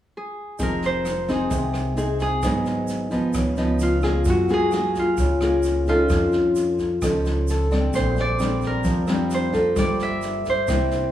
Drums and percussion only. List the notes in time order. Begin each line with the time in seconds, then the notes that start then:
0.59 kick, snare, shaker
0.82 snare, shaker
1.05 cross-stick, snare, shaker
1.28 kick, snare, shaker
1.50 kick, snare, shaker
1.74 cross-stick, snare, shaker
1.97 snare, shaker
2.20 kick, snare, shaker
2.42 kick, cross-stick, snare, shaker
2.65 snare, shaker
2.88 snare, shaker
3.11 kick, snare, shaker
3.33 kick, cross-stick, snare, shaker
3.56 snare, shaker
3.79 snare, shaker
4.01 kick, cross-stick, snare, shaker
4.25 kick, snare, shaker
4.48 snare, shaker
4.72 cross-stick, snare, shaker
4.95 kick, snare, shaker
5.17 kick, snare, shaker
5.41 cross-stick, snare, shaker
5.63 snare, shaker
5.87 kick, snare, shaker
6.09 kick, cross-stick, snare, shaker
6.32 snare, shaker
6.55 snare, shaker
6.79 kick, snare, shaker
7.02 kick, cross-stick, snare, shaker
7.25 snare, shaker
7.48 snare, shaker
7.71 kick, cross-stick, snare, shaker
7.93 kick, snare, shaker
8.16 snare, shaker
8.39 cross-stick, snare, shaker
8.61 kick, snare, shaker
8.84 kick, snare, shaker
9.07 cross-stick, snare, shaker
9.31 snare, shaker
9.53 kick, snare, shaker
9.76 kick, cross-stick, snare, shaker
9.99 snare, shaker
10.22 snare, shaker
10.45 kick, snare, shaker
10.68 kick, cross-stick, snare, shaker
10.91 snare, shaker